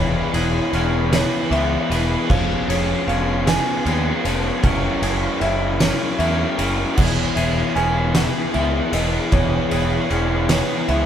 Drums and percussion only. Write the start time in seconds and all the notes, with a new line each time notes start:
0.34 ride
0.73 ride
1.13 snare, ride
1.52 ride
1.91 ride
2.30 kick, crash
2.70 ride
3.09 ride
3.47 snare, ride
3.86 ride
4.25 ride
4.63 kick, ride
5.03 ride
5.41 ride
5.80 snare, ride
6.20 ride
6.59 ride
6.97 kick, crash
7.37 ride
7.76 ride
8.15 snare, ride
8.54 ride
8.93 ride
9.32 kick, ride
9.71 ride
10.10 ride
10.49 snare, ride
10.89 ride